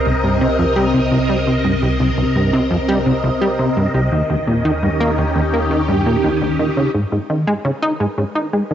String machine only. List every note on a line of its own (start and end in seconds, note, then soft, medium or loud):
0.00 4.12 C3 medium
0.00 4.12 C4 medium
0.00 5.25 A#4 medium
0.00 7.92 D#5 medium
4.12 6.95 D#3 medium
4.45 8.01 C#4 medium
4.84 6.94 G4 medium
6.95 8.74 G#3 medium
7.33 8.74 D#4 medium
7.57 8.74 B4 medium
7.70 8.74 A#4 medium